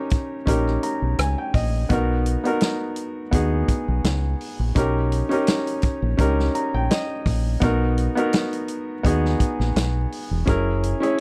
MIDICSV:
0, 0, Header, 1, 5, 480
1, 0, Start_track
1, 0, Tempo, 714286
1, 1279, Time_signature, 4, 2, 24, 8
1, 7527, End_track
2, 0, Start_track
2, 0, Title_t, "Grand piano"
2, 0, Program_c, 0, 0
2, 0, Control_c, 0, 64, 127
2, 0, Note_on_c, 0, 61, 75
2, 0, Note_on_c, 0, 63, 72
2, 0, Note_on_c, 0, 67, 67
2, 0, Note_on_c, 0, 70, 84
2, 237, Note_off_c, 0, 61, 0
2, 240, Note_off_c, 0, 63, 0
2, 243, Note_off_c, 0, 67, 0
2, 247, Note_off_c, 0, 70, 0
2, 306, Note_on_c, 0, 61, 74
2, 314, Note_on_c, 0, 63, 69
2, 317, Note_on_c, 0, 67, 67
2, 324, Note_on_c, 0, 70, 79
2, 559, Note_on_c, 0, 82, 65
2, 782, Note_off_c, 0, 82, 0
2, 800, Note_on_c, 0, 80, 66
2, 920, Note_off_c, 0, 80, 0
2, 929, Note_on_c, 0, 79, 59
2, 1031, Note_off_c, 0, 79, 0
2, 1039, Note_on_c, 0, 75, 61
2, 1150, Note_off_c, 0, 61, 0
2, 1154, Note_off_c, 0, 63, 0
2, 1156, Note_off_c, 0, 67, 0
2, 1159, Note_off_c, 0, 70, 0
2, 1262, Note_off_c, 0, 75, 0
2, 1271, Note_on_c, 0, 59, 76
2, 1277, Note_on_c, 0, 63, 69
2, 1284, Note_on_c, 0, 66, 68
2, 1288, Control_c, 0, 64, 0
2, 1293, Note_on_c, 0, 70, 78
2, 1411, Control_c, 0, 64, 127
2, 1591, Note_off_c, 0, 59, 0
2, 1595, Note_off_c, 0, 63, 0
2, 1598, Note_off_c, 0, 66, 0
2, 1603, Note_off_c, 0, 70, 0
2, 1638, Note_on_c, 0, 59, 71
2, 1645, Note_on_c, 0, 63, 68
2, 1652, Note_on_c, 0, 66, 71
2, 1658, Note_on_c, 0, 70, 87
2, 2158, Note_off_c, 0, 59, 0
2, 2162, Note_off_c, 0, 63, 0
2, 2166, Note_off_c, 0, 66, 0
2, 2168, Note_off_c, 0, 70, 0
2, 2227, Note_on_c, 0, 59, 75
2, 2234, Note_on_c, 0, 63, 72
2, 2239, Note_on_c, 0, 66, 64
2, 2248, Note_on_c, 0, 68, 83
2, 3071, Note_off_c, 0, 59, 0
2, 3075, Note_off_c, 0, 63, 0
2, 3077, Note_off_c, 0, 66, 0
2, 3082, Note_off_c, 0, 68, 0
2, 3192, Note_on_c, 0, 61, 72
2, 3195, Note_on_c, 0, 63, 68
2, 3203, Note_on_c, 0, 67, 69
2, 3209, Control_c, 0, 64, 0
2, 3209, Note_on_c, 0, 70, 81
2, 3327, Control_c, 0, 64, 127
2, 3512, Note_off_c, 0, 61, 0
2, 3514, Note_off_c, 0, 63, 0
2, 3518, Note_off_c, 0, 67, 0
2, 3521, Note_off_c, 0, 70, 0
2, 3556, Note_on_c, 0, 61, 84
2, 3563, Note_on_c, 0, 63, 74
2, 3571, Note_on_c, 0, 67, 71
2, 3576, Note_on_c, 0, 70, 80
2, 4078, Note_off_c, 0, 61, 0
2, 4081, Note_off_c, 0, 63, 0
2, 4085, Note_off_c, 0, 67, 0
2, 4088, Note_off_c, 0, 70, 0
2, 4149, Note_on_c, 0, 61, 80
2, 4154, Note_on_c, 0, 63, 72
2, 4162, Note_on_c, 0, 67, 68
2, 4168, Note_on_c, 0, 70, 87
2, 4401, Note_on_c, 0, 82, 64
2, 4521, Note_off_c, 0, 82, 0
2, 4533, Note_on_c, 0, 79, 67
2, 4634, Note_off_c, 0, 79, 0
2, 4642, Note_on_c, 0, 75, 69
2, 4992, Note_off_c, 0, 61, 0
2, 4995, Note_off_c, 0, 63, 0
2, 4998, Note_off_c, 0, 67, 0
2, 5002, Note_off_c, 0, 70, 0
2, 5094, Note_off_c, 0, 75, 0
2, 5108, Note_on_c, 0, 59, 75
2, 5118, Note_on_c, 0, 63, 72
2, 5123, Note_on_c, 0, 66, 70
2, 5130, Control_c, 0, 64, 0
2, 5130, Note_on_c, 0, 70, 85
2, 5240, Control_c, 0, 64, 127
2, 5431, Note_off_c, 0, 59, 0
2, 5435, Note_off_c, 0, 63, 0
2, 5438, Note_off_c, 0, 66, 0
2, 5442, Note_off_c, 0, 70, 0
2, 5479, Note_on_c, 0, 59, 78
2, 5486, Note_on_c, 0, 63, 70
2, 5492, Note_on_c, 0, 66, 71
2, 5499, Note_on_c, 0, 70, 87
2, 5999, Note_off_c, 0, 59, 0
2, 6003, Note_off_c, 0, 63, 0
2, 6006, Note_off_c, 0, 66, 0
2, 6009, Note_off_c, 0, 70, 0
2, 6071, Note_on_c, 0, 59, 80
2, 6076, Note_on_c, 0, 63, 70
2, 6084, Note_on_c, 0, 66, 73
2, 6088, Note_on_c, 0, 68, 86
2, 6913, Note_off_c, 0, 59, 0
2, 6915, Note_off_c, 0, 63, 0
2, 6919, Note_off_c, 0, 66, 0
2, 6921, Note_off_c, 0, 68, 0
2, 7026, Note_on_c, 0, 61, 75
2, 7032, Note_on_c, 0, 64, 67
2, 7039, Note_on_c, 0, 68, 70
2, 7046, Note_on_c, 0, 70, 86
2, 7048, Control_c, 0, 64, 0
2, 7169, Control_c, 0, 64, 127
2, 7349, Note_off_c, 0, 61, 0
2, 7352, Note_off_c, 0, 64, 0
2, 7355, Note_off_c, 0, 68, 0
2, 7359, Note_off_c, 0, 70, 0
2, 7394, Note_on_c, 0, 61, 80
2, 7403, Note_on_c, 0, 64, 78
2, 7410, Note_on_c, 0, 68, 70
2, 7414, Note_on_c, 0, 73, 86
2, 7527, Note_off_c, 0, 61, 0
2, 7527, Note_off_c, 0, 64, 0
2, 7527, Note_off_c, 0, 68, 0
2, 7527, Note_off_c, 0, 73, 0
2, 7527, End_track
3, 0, Start_track
3, 0, Title_t, "Fingered electric bass"
3, 0, Program_c, 1, 33
3, 318, Note_on_c, 1, 34, 78
3, 515, Note_off_c, 1, 34, 0
3, 686, Note_on_c, 1, 35, 68
3, 777, Note_off_c, 1, 35, 0
3, 797, Note_on_c, 1, 37, 84
3, 904, Note_off_c, 1, 37, 0
3, 1035, Note_on_c, 1, 34, 86
3, 1233, Note_off_c, 1, 34, 0
3, 1278, Note_on_c, 1, 35, 97
3, 1582, Note_off_c, 1, 35, 0
3, 2235, Note_on_c, 1, 39, 83
3, 2434, Note_off_c, 1, 39, 0
3, 2609, Note_on_c, 1, 35, 82
3, 2699, Note_off_c, 1, 35, 0
3, 2716, Note_on_c, 1, 37, 83
3, 2914, Note_off_c, 1, 37, 0
3, 3088, Note_on_c, 1, 34, 84
3, 3179, Note_off_c, 1, 34, 0
3, 3198, Note_on_c, 1, 35, 106
3, 3502, Note_off_c, 1, 35, 0
3, 4047, Note_on_c, 1, 34, 86
3, 4139, Note_off_c, 1, 34, 0
3, 4158, Note_on_c, 1, 37, 78
3, 4356, Note_off_c, 1, 37, 0
3, 4530, Note_on_c, 1, 34, 69
3, 4620, Note_off_c, 1, 34, 0
3, 4879, Note_on_c, 1, 34, 96
3, 5076, Note_off_c, 1, 34, 0
3, 5121, Note_on_c, 1, 35, 107
3, 5424, Note_off_c, 1, 35, 0
3, 6080, Note_on_c, 1, 39, 85
3, 6277, Note_off_c, 1, 39, 0
3, 6448, Note_on_c, 1, 34, 84
3, 6539, Note_off_c, 1, 34, 0
3, 6557, Note_on_c, 1, 35, 83
3, 6755, Note_off_c, 1, 35, 0
3, 6928, Note_on_c, 1, 28, 90
3, 7019, Note_off_c, 1, 28, 0
3, 7040, Note_on_c, 1, 30, 101
3, 7343, Note_off_c, 1, 30, 0
3, 7527, End_track
4, 0, Start_track
4, 0, Title_t, "Muted fingered electric bass strokes"
4, 3921, Note_on_c, 9, 29, 43
4, 3988, Note_off_c, 9, 29, 0
4, 7527, End_track
5, 0, Start_track
5, 0, Title_t, "Drums"
5, 68, Note_on_c, 9, 42, 60
5, 78, Note_on_c, 9, 36, 92
5, 136, Note_off_c, 9, 42, 0
5, 145, Note_off_c, 9, 36, 0
5, 316, Note_on_c, 9, 36, 90
5, 323, Note_on_c, 9, 42, 88
5, 384, Note_off_c, 9, 36, 0
5, 390, Note_off_c, 9, 42, 0
5, 453, Note_on_c, 9, 37, 36
5, 521, Note_off_c, 9, 37, 0
5, 557, Note_on_c, 9, 42, 68
5, 625, Note_off_c, 9, 42, 0
5, 797, Note_on_c, 9, 42, 87
5, 801, Note_on_c, 9, 37, 104
5, 864, Note_off_c, 9, 42, 0
5, 868, Note_off_c, 9, 37, 0
5, 1036, Note_on_c, 9, 36, 84
5, 1040, Note_on_c, 9, 46, 73
5, 1103, Note_off_c, 9, 36, 0
5, 1107, Note_off_c, 9, 46, 0
5, 1274, Note_on_c, 9, 42, 75
5, 1277, Note_on_c, 9, 36, 101
5, 1342, Note_off_c, 9, 42, 0
5, 1345, Note_off_c, 9, 36, 0
5, 1518, Note_on_c, 9, 42, 70
5, 1585, Note_off_c, 9, 42, 0
5, 1648, Note_on_c, 9, 42, 55
5, 1715, Note_off_c, 9, 42, 0
5, 1751, Note_on_c, 9, 42, 81
5, 1760, Note_on_c, 9, 38, 119
5, 1819, Note_off_c, 9, 42, 0
5, 1827, Note_off_c, 9, 38, 0
5, 1989, Note_on_c, 9, 42, 65
5, 2056, Note_off_c, 9, 42, 0
5, 2236, Note_on_c, 9, 36, 95
5, 2238, Note_on_c, 9, 42, 88
5, 2303, Note_off_c, 9, 36, 0
5, 2306, Note_off_c, 9, 42, 0
5, 2476, Note_on_c, 9, 36, 78
5, 2476, Note_on_c, 9, 42, 67
5, 2543, Note_off_c, 9, 36, 0
5, 2543, Note_off_c, 9, 42, 0
5, 2718, Note_on_c, 9, 42, 87
5, 2722, Note_on_c, 9, 38, 104
5, 2785, Note_off_c, 9, 42, 0
5, 2789, Note_off_c, 9, 38, 0
5, 2961, Note_on_c, 9, 46, 73
5, 3028, Note_off_c, 9, 46, 0
5, 3196, Note_on_c, 9, 42, 82
5, 3198, Note_on_c, 9, 36, 99
5, 3263, Note_off_c, 9, 42, 0
5, 3265, Note_off_c, 9, 36, 0
5, 3440, Note_on_c, 9, 42, 71
5, 3507, Note_off_c, 9, 42, 0
5, 3570, Note_on_c, 9, 42, 55
5, 3637, Note_off_c, 9, 42, 0
5, 3676, Note_on_c, 9, 42, 80
5, 3684, Note_on_c, 9, 38, 107
5, 3743, Note_off_c, 9, 42, 0
5, 3751, Note_off_c, 9, 38, 0
5, 3811, Note_on_c, 9, 42, 59
5, 3878, Note_off_c, 9, 42, 0
5, 3911, Note_on_c, 9, 42, 60
5, 3919, Note_on_c, 9, 36, 92
5, 3978, Note_off_c, 9, 42, 0
5, 3987, Note_off_c, 9, 36, 0
5, 4158, Note_on_c, 9, 36, 96
5, 4163, Note_on_c, 9, 42, 82
5, 4225, Note_off_c, 9, 36, 0
5, 4230, Note_off_c, 9, 42, 0
5, 4298, Note_on_c, 9, 38, 34
5, 4365, Note_off_c, 9, 38, 0
5, 4401, Note_on_c, 9, 42, 69
5, 4468, Note_off_c, 9, 42, 0
5, 4641, Note_on_c, 9, 42, 85
5, 4646, Note_on_c, 9, 38, 105
5, 4708, Note_off_c, 9, 42, 0
5, 4713, Note_off_c, 9, 38, 0
5, 4877, Note_on_c, 9, 36, 77
5, 4884, Note_on_c, 9, 46, 75
5, 4945, Note_off_c, 9, 36, 0
5, 4951, Note_off_c, 9, 46, 0
5, 5116, Note_on_c, 9, 42, 74
5, 5119, Note_on_c, 9, 36, 98
5, 5183, Note_off_c, 9, 42, 0
5, 5186, Note_off_c, 9, 36, 0
5, 5361, Note_on_c, 9, 42, 72
5, 5428, Note_off_c, 9, 42, 0
5, 5491, Note_on_c, 9, 42, 55
5, 5559, Note_off_c, 9, 42, 0
5, 5596, Note_on_c, 9, 42, 81
5, 5605, Note_on_c, 9, 38, 107
5, 5664, Note_off_c, 9, 42, 0
5, 5672, Note_off_c, 9, 38, 0
5, 5730, Note_on_c, 9, 42, 56
5, 5797, Note_off_c, 9, 42, 0
5, 5834, Note_on_c, 9, 42, 62
5, 5901, Note_off_c, 9, 42, 0
5, 6079, Note_on_c, 9, 36, 84
5, 6085, Note_on_c, 9, 42, 84
5, 6146, Note_off_c, 9, 36, 0
5, 6152, Note_off_c, 9, 42, 0
5, 6217, Note_on_c, 9, 38, 36
5, 6285, Note_off_c, 9, 38, 0
5, 6318, Note_on_c, 9, 36, 82
5, 6318, Note_on_c, 9, 42, 68
5, 6385, Note_off_c, 9, 36, 0
5, 6386, Note_off_c, 9, 42, 0
5, 6452, Note_on_c, 9, 38, 28
5, 6519, Note_off_c, 9, 38, 0
5, 6560, Note_on_c, 9, 42, 86
5, 6564, Note_on_c, 9, 38, 101
5, 6627, Note_off_c, 9, 42, 0
5, 6631, Note_off_c, 9, 38, 0
5, 6803, Note_on_c, 9, 46, 72
5, 6870, Note_off_c, 9, 46, 0
5, 7039, Note_on_c, 9, 36, 106
5, 7039, Note_on_c, 9, 42, 76
5, 7106, Note_off_c, 9, 36, 0
5, 7106, Note_off_c, 9, 42, 0
5, 7281, Note_on_c, 9, 42, 69
5, 7348, Note_off_c, 9, 42, 0
5, 7413, Note_on_c, 9, 42, 54
5, 7480, Note_off_c, 9, 42, 0
5, 7527, End_track
0, 0, End_of_file